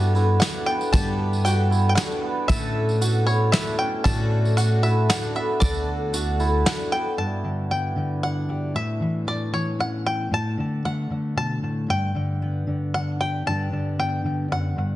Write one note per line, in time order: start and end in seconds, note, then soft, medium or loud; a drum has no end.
0.00 0.38 G2 loud
0.00 0.15 G3 medium
0.00 0.15 B3 medium
0.00 0.66 B3 medium
0.00 0.16 D4 medium
0.00 0.41 D4 medium
0.00 0.15 E4 medium
0.00 0.99 F#4 medium
0.00 0.14 A4 medium
0.00 0.75 A4 medium
0.00 0.39 G5 medium
0.00 tambourine soft
0.15 0.42 B3 soft
0.15 0.41 D4 soft
0.15 1.70 E4 medium
0.15 0.41 A4 medium
0.15 tambourine soft
0.40 0.67 G3 medium
0.40 1.97 D4 medium
0.40 0.68 D4 medium
0.40 0.66 F#5 medium
0.40 snare medium
0.40 closed hi-hat medium
0.40 tambourine medium
0.44 0.67 A4 medium
0.66 2.23 B3 medium
0.66 0.94 B3 soft
0.66 0.93 D4 soft
0.66 0.94 A4 soft
0.66 0.91 G5 medium
0.81 tambourine soft
0.93 1.94 G2 loud
0.93 1.44 G3 medium
0.93 1.46 B3 medium
0.93 1.45 D4 medium
0.93 1.51 G4 medium
0.93 1.48 A4 medium
0.93 1.44 A5 medium
0.93 kick medium
0.93 closed hi-hat soft
0.93 tambourine medium
1.33 tambourine soft
1.45 1.95 G3 medium
1.45 1.97 B3 medium
1.45 1.97 D4 medium
1.45 3.01 F#4 medium
1.45 1.99 A4 medium
1.45 1.87 G5 medium
1.45 closed hi-hat soft
1.45 tambourine medium
1.71 3.26 E4 medium
1.71 tambourine soft
1.89 1.95 G5 medium
1.95 2.50 B3 medium
1.95 3.53 D4 medium
1.95 2.49 D4 soft
1.95 2.45 F#5 medium
1.95 snare medium
1.95 closed hi-hat medium
1.95 tambourine medium
1.99 2.50 A4 medium
2.11 tambourine soft
2.23 5.35 B3 medium
2.48 3.01 A2 medium
2.48 3.50 A2 loud
2.48 3.00 A3 medium
2.48 3.01 C#4 medium
2.48 3.02 E4 medium
2.48 4.04 A4 medium
2.48 3.03 A4 medium
2.48 3.23 E5 medium
2.48 kick medium
2.48 closed hi-hat soft
2.48 tambourine medium
2.89 tambourine soft
3.01 3.27 A3 medium
3.01 3.28 C#4 medium
3.01 3.27 E4 medium
3.01 4.57 F#4 medium
3.01 3.26 A4 medium
3.01 closed hi-hat medium
3.01 tambourine medium
3.27 3.53 C#4 soft
3.27 4.83 E4 medium
3.27 3.54 E4 soft
3.27 3.53 A4 soft
3.27 3.54 C#5 medium
3.27 tambourine soft
3.52 4.05 A3 soft
3.52 4.05 C#4 medium
3.52 3.85 D4 medium
3.52 4.06 E4 medium
3.52 4.06 A4 medium
3.52 3.78 E5 medium
3.52 snare medium
3.52 closed hi-hat medium
3.52 tambourine medium
3.67 tambourine soft
3.79 5.15 C#4 medium
3.79 4.04 G5 medium
4.04 4.57 A2 medium
4.04 5.06 A2 loud
4.04 4.55 D3 medium
4.04 4.57 D4 medium
4.04 4.58 F#4 medium
4.04 5.61 A4 medium
4.04 4.59 A4 medium
4.04 4.53 A5 loud
4.04 kick medium
4.04 closed hi-hat medium
4.04 tambourine medium
4.45 tambourine soft
4.57 4.83 D3 medium
4.57 4.84 D4 medium
4.57 6.13 F#4 medium
4.57 4.83 F#4 medium
4.57 4.82 A4 medium
4.57 4.84 F#5 medium
4.57 closed hi-hat medium
4.57 tambourine medium
4.83 5.09 D4 soft
4.83 6.39 E4 medium
4.83 5.09 F#4 soft
4.83 5.09 A4 soft
4.83 5.10 E5 medium
4.83 tambourine soft
5.09 5.35 D3 medium
5.09 6.65 D4 medium
5.09 5.36 D4 medium
5.09 5.35 F#4 medium
5.09 5.36 F#5 medium
5.09 snare medium
5.09 closed hi-hat medium
5.09 tambourine medium
5.23 tambourine soft
5.35 6.91 B3 medium
5.35 5.60 D4 soft
5.35 5.61 F#4 soft
5.35 5.61 A4 soft
5.35 5.63 E5 medium
5.60 6.62 D2 loud
5.60 6.12 D3 medium
5.60 6.13 D4 medium
5.60 6.14 F#4 medium
5.60 8.54 A4 medium
5.60 6.14 A4 medium
5.60 6.61 D5 medium
5.60 kick medium
5.60 closed hi-hat soft
5.60 tambourine medium
5.74 tambourine soft
6.13 6.40 D3 medium
6.13 6.40 D4 medium
6.13 9.38 F#4 medium
6.13 6.40 F#4 medium
6.13 6.38 A4 medium
6.13 closed hi-hat medium
6.13 tambourine medium
6.40 6.65 D4 soft
6.40 9.88 E4 medium
6.40 6.66 F#4 soft
6.40 6.66 A4 soft
6.40 tambourine soft
6.65 10.39 D4 medium
6.65 6.92 D4 medium
6.65 6.92 F#4 medium
6.65 6.91 A4 medium
6.65 6.90 F#5 medium
6.65 snare medium
6.65 closed hi-hat medium
6.65 tambourine medium
6.79 tambourine soft
6.92 11.06 B3 medium
6.92 7.20 D4 soft
6.92 7.19 F#4 soft
6.92 7.18 A4 soft
6.92 7.18 G5 medium
7.17 8.71 G2 soft
7.17 7.71 A5 medium
7.44 7.95 D3 soft
7.71 8.72 B3 soft
7.71 8.23 G5 medium
7.96 8.75 D3 soft
8.23 8.72 D4 soft
8.23 8.77 F#5 medium
8.49 8.72 G4 soft
8.74 10.30 A2 soft
8.74 9.24 E5 medium
9.00 9.51 E3 soft
9.27 10.84 A3 soft
9.27 9.52 D5 medium
9.52 10.28 E3 soft
9.52 9.78 C#5 medium
9.79 10.29 C#4 soft
9.79 10.06 F#5 medium
10.06 10.33 G5 medium
10.31 10.58 A2 soft
10.31 10.82 A5 medium
10.57 11.09 D3 soft
10.85 11.91 A3 soft
10.85 11.37 F#5 medium
11.10 12.14 D3 soft
11.36 11.62 B2 soft
11.36 11.86 A5 medium
11.62 11.89 A2 soft
11.88 13.43 G2 medium
11.88 12.94 G5 medium
12.15 12.66 D3 soft
12.42 13.43 B3 soft
12.67 13.45 D3 soft
12.94 13.43 D4 soft
12.94 13.18 F#5 medium
13.20 13.43 G4 soft
13.20 13.47 G5 medium
13.46 14.50 G2 medium
13.46 13.71 D3 soft
13.46 13.98 B3 soft
13.46 14.96 D4 soft
13.46 14.96 G4 soft
13.46 13.99 A5 medium
13.72 14.23 D3 soft
13.99 14.96 B3 soft
13.99 14.48 G5 medium
14.24 14.96 D3 soft
14.50 14.76 F#2 soft
14.50 14.96 F#5 medium
14.76 14.96 G2 soft